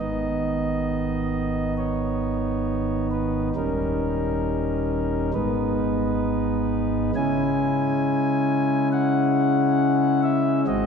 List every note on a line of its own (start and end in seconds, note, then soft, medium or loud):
0.00 3.52 G#1 medium
0.00 3.51 G#2 medium
0.00 3.52 D#3 soft
0.00 3.52 B3 soft
0.00 3.52 D#4 soft
0.00 1.74 D#5 medium
1.77 3.07 C#5 medium
3.11 3.49 B4 medium
3.56 5.31 D#1 medium
3.56 5.31 D#2 soft
3.56 5.31 G3 soft
3.56 5.31 C#4 soft
3.56 5.31 D#4 soft
3.56 5.31 A#4 medium
5.34 7.11 G#1 medium
5.34 7.12 G#2 medium
5.34 7.11 G#3 soft
5.34 7.11 B3 soft
5.34 7.11 D#4 soft
5.34 7.11 B4 medium
7.15 10.64 C#3 medium
7.15 10.64 G#3 soft
7.15 10.64 C#4 soft
7.15 10.65 E4 soft
7.15 8.89 G#5 loud
8.92 10.21 F#5 loud
10.23 10.61 E5 loud
10.67 10.86 G#1 medium
10.67 10.86 G#2 medium
10.67 10.86 G#3 medium
10.67 10.86 C4 medium
10.67 10.86 F#4 medium
10.67 10.86 D#5 loud